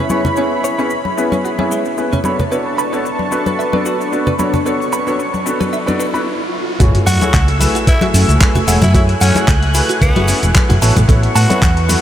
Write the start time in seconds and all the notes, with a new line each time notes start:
Already playing: E4 C#5 B5
0.10 B3 C#4 E4 G#4 C#5, closed hi-hat, high conga, cabasa, shaker
0.25 C#4, closed hi-hat, low conga, cabasa, shaker
0.36 B3 C#4 E4 G#4 C#5, closed hi-hat, cabasa
0.52 closed hi-hat
0.64 C#5, closed hi-hat, cabasa, shaker
0.78 B3 C#4 E4 G#4 C#5, closed hi-hat, cabasa, shaker
0.90 closed hi-hat, cabasa, shaker
1.05 closed hi-hat, high conga
1.17 B3 C#4 E4 G#4 B4, closed hi-hat, cabasa, shaker
1.32 C#4, closed hi-hat, high conga, cabasa, shaker
1.44 F#4, closed hi-hat, cabasa, shaker
1.59 B3 C#4 E4 G#4 E5, closed hi-hat, high conga
1.71 G#3, closed hi-hat, cabasa, shaker
1.85 closed hi-hat, cabasa, shaker
1.97 B3 C#4 E4 G#4 B4, closed hi-hat, cabasa, shaker
2.12 C#4, closed hi-hat, low conga, cabasa
2.24 B3 D4 F#4 A4 B4 C#5 A5 B5 C#6, closed hi-hat, high conga, cabasa, shaker
2.39 B4, closed hi-hat, low conga, cabasa, shaker
2.51 B3 D4 F#4 A4 B4 C#5, closed hi-hat, riser, cabasa, shaker
2.66 closed hi-hat
2.78 B5, closed hi-hat, cabasa, shaker
2.92 B3 D4 F#4 A4 B4 C#5, closed hi-hat, cabasa, shaker
3.05 closed hi-hat, cabasa, shaker
3.19 closed hi-hat, high conga
3.31 B3 D4 F#4 A4 B4, closed hi-hat, cabasa, shaker
3.46 B4, closed hi-hat, high conga, cabasa, shaker
3.59 E5, closed hi-hat, cabasa, shaker
3.73 B3 D4 F#4 A4 B4 D5, closed hi-hat, high conga
3.86 F#4, closed hi-hat, cabasa, shaker
4.00 closed hi-hat, cabasa, shaker
4.12 B3 D4 F#4 A4 B4, closed hi-hat, cabasa, shaker
4.27 B4, closed hi-hat, low conga, cabasa
4.39 B3 D4 F#4 A4 C#5 B5 C#6, closed hi-hat, high conga, cabasa, shaker
4.54 B4, closed hi-hat, low conga, cabasa, shaker
4.65 B3 D4 F#4 A4 B4 C#5, closed hi-hat, cabasa, shaker
4.80 closed hi-hat, cabasa
4.92 B5, closed hi-hat, cabasa, shaker
5.07 B3 D4 F#4 A4 B4 C#5, closed hi-hat, cabasa, shaker
5.19 closed hi-hat, cabasa, shaker
5.34 closed hi-hat, high conga, cabasa
5.45 B3 D4 F#4 A4 B4, closed hi-hat, cabasa, shaker
5.60 B4, closed hi-hat, high conga, cabasa, shaker
5.73 E5, closed hi-hat, cabasa, shaker
5.86 B3 D4 F#4 A4 B4 D5, closed hi-hat, high conga, cabasa
5.99 B4, closed hi-hat, cabasa, shaker
6.13 B3 D4 F#4 A4 B4 B5, closed hi-hat, cabasa, shaker
6.79 F#1 A3 E4 F#4 G#4 C#5 G#5 E6, kick, closed hi-hat, sub drop, cabasa, shaker
6.95 closed hi-hat
7.07 F#2 F#4 F#5, open hi-hat, cabasa, shaker
7.21 A3 E4 F#4 G#4 C#5, muted fingered electric bass stroke, closed hi-hat, high conga, cabasa, shaker
7.34 C#2, kick, clap, closed hi-hat, cabasa, shaker
7.48 closed hi-hat
7.60 A3 E4 F#4 G#4 B4, open hi-hat, high conga, cabasa, shaker
7.75 F#4, closed hi-hat, cabasa, shaker
7.87 E4 B4, kick, closed hi-hat, cabasa, shaker
8.01 A3 E4 F#4 G#4 E5, closed hi-hat, high conga
8.14 F#2 C#4, open hi-hat, cabasa, shaker
8.28 C#2, closed hi-hat, cabasa, shaker
8.40 A3 E4 F#4 G#4 B4, kick, clap, closed hi-hat, high conga, cabasa, shaker
8.55 F#4, closed hi-hat, low conga, cabasa
8.67 E1 A3 E4 F#4 G#4 C#5 F#5, open hi-hat, cabasa, shaker
8.82 F#2 E4 F#4, closed hi-hat, high conga, low conga, cabasa, shaker
8.94 A3 E4 F#4 G#4 C#5 F#6, kick, closed hi-hat, cabasa, shaker
9.09 closed hi-hat
9.21 F#2 C#4 F#5, open hi-hat, cabasa, shaker
9.35 A3 E4 F#4 G#4 C#5, muted fingered electric bass stroke, closed hi-hat, high conga, cabasa, shaker
9.48 C#2, kick, clap, closed hi-hat, cabasa, shaker
9.63 closed hi-hat
9.74 A3 E4 F#4 G#4 B4, open hi-hat, cabasa, shaker
9.89 F#4, closed hi-hat, cabasa, shaker
10.01 C#2 B3 B4, kick, closed hi-hat, cabasa, shaker
10.16 F#1 A3 E4 F#4 G#4 E5, closed hi-hat, high conga
10.28 C#4, open hi-hat, cabasa, shaker
10.43 E1, closed hi-hat, cabasa, shaker
10.55 A3 E4 F#4 G#4 B4, kick, clap, closed hi-hat, high conga, cabasa, shaker
10.69 F#1 F#4, closed hi-hat, low conga, cabasa
10.81 A1 B3 E4 F#4 A4 B4 C#5 F#5 A5 C#6, open hi-hat, cabasa, shaker
10.96 A1 A4, closed hi-hat, high conga, low conga, cabasa, shaker
11.08 A1 B3 E4 F#4 A4 C#5, kick, closed hi-hat, cabasa, shaker
11.23 closed hi-hat
11.35 A2 F#4 A5, open hi-hat, cabasa, shaker
11.49 B3 E4 F#4 A4 C#5, muted fingered electric bass stroke, closed hi-hat, high conga, cabasa, shaker
11.62 E2, kick, clap, closed hi-hat, cabasa, shaker
11.77 closed hi-hat
11.88 B3 E4 F#4 A4 B4, open hi-hat, high conga, cabasa, shaker